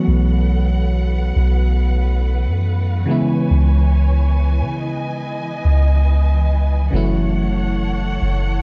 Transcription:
Already playing: fm electric piano E3 F#3 A3 B3 F#4 A4 C#5, string section E3 A4 B4 F#5
0.07 808-style bass B1
1.36 808-style bass B1
2.47 808-style bass F#2
3.05 fm electric piano C#3 E3 G#3, string section C#5 G#5
3.10 fm electric piano B3 E4
3.50 808-style bass C#2
4.61 808-style bass C#3
4.79 string section D#5
5.65 808-style bass C#2
6.91 808-style bass F#1, fm electric piano C#3 E3 F#3, string section A4 C#5 F#5
6.95 fm electric piano A3 E4
8.22 808-style bass F#1

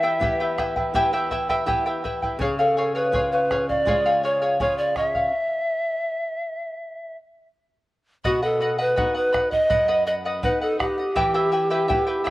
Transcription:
Already playing: nylon-string guitar E3, pan flute E5
0.03 charango E4 G4 B4 E5 G5
0.20 nylon-string guitar B3 E4 G4, charango E4 B4 E5 G5, bombo low
0.40 charango E4 B4 G5
0.58 charango E4 B4 E5 G5, bombo rim, bombo low
0.76 charango E4 B4 G5, bombo low
0.94 nylon-string guitar B3 E4 G4, charango E4 G4 B4 E5 G5, bombo low
1.13 charango E4 G4 B4 E5 G5
1.31 charango E4 B4 E5 G5, bombo low
1.49 charango E4 G4 B4 E5 G5, bombo low
1.66 nylon-string guitar B3 E4 G4, charango E4 B4 E5 G5, bombo low
1.86 charango E4 B4 G5
2.04 charango E4 B4 E5 G5, bombo low
2.22 charango E4 B4 G5, bombo low
2.39 nylon-string guitar C#3, charango G#4 C#5 F5, pan flute G#4, bombo low
2.58 charango G#4 C#5 F5, pan flute A4
2.77 charango G#4 C#5 F5
2.95 charango G#4 C#5 F5, pan flute B4
3.12 nylon-string guitar C#4 F4 G#4, charango G#4 C#5 F5, bombo low
3.32 pan flute B4, charango C#5 F5
3.51 charango G#4 C#5 F5, bombo rim, bombo low
3.69 charango C#5 F5, pan flute D5, bombo low
3.86 nylon-string guitar G#3 F4 G#4, charango G#4 C#5 F5, bombo low
4.06 charango G#4 C#5 F5
4.23 charango G#4 C#5 F5, pan flute C#5
4.42 charango G#4 C#5 F5
4.60 nylon-string guitar C#4 F4 G#4, charango G#4 C#5 F5, pan flute C#5, bombo low
4.78 charango C#5 F5, pan flute D5
4.96 charango G#4 C#5 F5, pan flute D#5, bombo rim, bombo low
5.09 pan flute E5
5.15 charango C#5 F5, bombo low
8.24 nylon-string guitar B2, pan flute F#4, charango B4 D#5 F#5, bombo low
8.42 pan flute A4, charango B4 D#5 F#5
8.60 charango B4 D#5 F#5
8.78 charango B4 D#5 F#5, pan flute B4
8.96 nylon-string guitar B3 D#4 F#4, charango B4 D#5 F#5, bombo low
9.15 pan flute B4, charango D#5 F#5
9.33 charango B4 D#5 F#5, bombo rim, bombo low
9.51 pan flute D#5, charango D#5 F#5, bombo low
9.70 nylon-string guitar F#2, charango B4 D#5 F#5, bombo low
9.88 charango B4 D#5 F#5
10.07 charango B4 D#5 F#5, pan flute D#5
10.25 charango B4 D#5 F#5
10.43 nylon-string guitar B3 D#4 F#5, charango B4 D#5 F#5, pan flute B4, bombo low
10.61 pan flute A4, charango D#5 F#5
10.79 pan flute G4, charango B4 D#5 F#5, bombo rim, bombo low
10.98 charango D#5 F#5
11.16 nylon-string guitar E3, charango E4 G4 B4 E5 G5, bombo low
11.34 charango E4 G4 B4 E5 G5
11.52 charango E4 B4 E5 G5
11.70 charango E4 G4 B4 E5 G5
11.88 nylon-string guitar B3 E4 G4, charango E4 B4 E5 G5, bombo low
12.07 charango E4 B4 G5
12.24 charango E4 B4 E5 G5, bombo rim, bombo low

